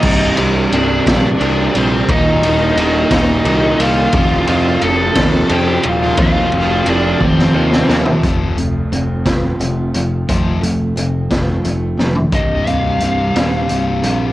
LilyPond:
<<
  \new Staff \with { instrumentName = "Lead electric guitar" } { \time 6/8 \key f \mixolydian \tempo 4. = 59 <ees' ees''>8 r8 <d' d''>4. <c' c''>8 | <ees' ees''>4 <ees' ees''>8 <ees' ees''>4 <f' f''>8~ | <f' f''>4 <a' a''>4 <g' g''>8 <f' f''>8 | <f' f''>4 <d' d''>8 <c' c''>4 r8 |
r2. | r2. | ees''8 f''2~ f''8 | }
  \new Staff \with { instrumentName = "Steel-string acoustic guitar" } { \clef bass \time 6/8 \key f \mixolydian r2. | r2. | r2. | r2. |
f,8 a8 c'8 f'8 a8 f8 | f,8 a8 c'8 f'8 a8 f8 | c,8 c8 g8 c8 g,8 c8 | }
  \new Staff \with { instrumentName = "Overdriven electric guitar" } { \clef bass \time 6/8 \key f \mixolydian <c, g, c>8 <c, g, c>8 <c, g, c>8 <c, g, c>8 <c, g, c>8 <c, g, c>8 | <ees, bes, ees>8 <ees, bes, ees>8 <ees, bes, ees>8 <ees, bes, ees>8 <ees, bes, ees>8 <ees, bes, ees>8 | <f, c f>8 <f, c f>8 <f, c f>8 <f, c f>8 <f, c f>8 <f, c f>8 | <f, c f>8 <f, c f>8 <f, c f>8 <f, c f>8 <f, c f>8 <f, c f>8 |
r2. | r2. | r2. | }
  \new Staff \with { instrumentName = "Overdriven electric guitar" } { \clef bass \time 6/8 \key f \mixolydian <c, g, c>8 <c, g, c>8 <c, g, c>8 <c, g, c>8 <c, g, c>8 <c, g, c>8 | <ees, bes, ees>8 <ees, bes, ees>8 <ees, bes, ees>8 <ees, bes, ees>8 <ees, bes, ees>8 <ees, bes, ees>8 | <f, c f>8 <f, c f>8 <f, c f>8 <f, c f>8 <f, c f>8 <f, c f>8 | <f, c f>8 <f, c f>8 <f, c f>8 <f, c f>8 <f, c f>8 <f, c f>8 |
<f, c f>8 <f, c>8 <f, c>8 <f, c>8 <f, c>8 <f, c>8 | <f, c f>8 <f, c>8 <f, c>8 <f, c>8 <f, c>8 <f, c>8 | <c, g, c>8 <c, g, c>8 <c, g, c>8 <c, g, c>8 <c, g, c>8 <c, g, c>8 | }
  \new Staff \with { instrumentName = "Picked electric bass" } { \clef bass \time 6/8 \key f \mixolydian c,,8 c,8 c,,8 bes,,8 c,8 bes,,8 | ees,,8 ees,,8 ees,,8 ees,,8 c,8 c,8 | f,,8 f,8 f,,8 ees,8 f,8 ees,,8 | ees,8 f,,8 f,,8 f,,8 ees,8 ees,8 |
f,,4 f,,4 f,,8 f,,8 | f,,8 f,,8 f,,8 f,,8 f,,8 f,,8 | c,,8 c,,8 c,,8 ees,,8 c,,8 bes,,8 | }
  \new DrumStaff \with { instrumentName = "Drums" } \drummode { \time 6/8 <cymc bd>8 cymr8 cymr8 <bd cymr sn>8 cymr8 cymr8 | <bd cymr>8 cymr8 cymr8 <bd cymr sn>8 cymr8 cymr8 | <bd cymr>8 cymr8 cymr8 <bd cymr sn>8 cymr8 cymr8 | <bd cymr>8 cymr8 cymr8 <bd tommh>16 sn8 sn16 sn16 tomfh16 |
<hh bd>8 hh8 hh8 <hh bd sn>8 hh8 hh8 | <hh bd>8 hh8 hh8 <hh bd sn>8 hh8 sn16 tomfh16 | <hh bd>8 hh8 hh8 <hh sn>8 hh8 hh8 | }
>>